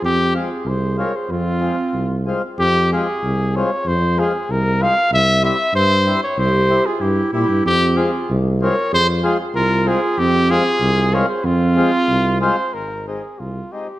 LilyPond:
<<
  \new Staff \with { instrumentName = "Trumpet" } { \time 2/4 \key f \minor \tempo 4 = 95 g'8 aes'8 c''8 des''16 c''16 | f'4. r8 | g'8 aes'4 des''8 | c''8 aes'8 bes'8 f''8 |
e''8 e''8 c''8. des''16 | c''8. aes'16 g'8 g'8 | g'8 aes'8 r8 des''8 | c''8 aes'8 bes'8 aes'8 |
g'8 aes'4 des''16 c''16 | f'4. c''8 | \key aes \major bes'8 aes'8 f'8 g'8 | }
  \new Staff \with { instrumentName = "Clarinet" } { \time 2/4 \key f \minor c'8 f'8 aes'8 bes'16 aes'16 | c'4. r8 | r2 | r2 |
r2 | g'8. f'16 e'8 e'8 | c'8 f'8 r8 bes'8 | aes'8 f'8 f'8 f'8 |
c'8 f'4 bes'16 aes'16 | c'4. r8 | \key aes \major r2 | }
  \new Staff \with { instrumentName = "Accordion" } { \time 2/4 \key f \minor r8 <aes c' f'>8 r8 <aes c' f'>8 | r8 <aes c' f'>8 r8 <aes c' f'>8 | r8 <aes c' f'>8 r8 <aes c' f'>8 | r8 <aes c' f'>8 r8 <aes c' f'>8 |
r8 <g c' e'>8 r8 <g c' e'>8 | r8 <g c' e'>8 r8 <g c' e'>8 | r8 <aes c' f'>8 r8 <aes c' f'>8 | r8 <aes c' f'>8 r8 <aes c' f'>8 |
r8 <aes c' f'>8 r8 <aes c' f'>8 | r8 <aes c' f'>8 r8 <aes c' f'>8 | \key aes \major r8 <aes c' ees'>8 r8 <aes c' ees'>8 | }
  \new Staff \with { instrumentName = "Tuba" } { \clef bass \time 2/4 \key f \minor f,4 c,4 | f,4 c,4 | f,4 c,4 | f,4 c,4 |
c,4 g,4 | c,4 g,8 bes,16 g,16 | f,4 c,4 | f,4 c,4 |
f,4 c,4 | f,4 c,4 | \key aes \major aes,,4 c,8 r8 | }
>>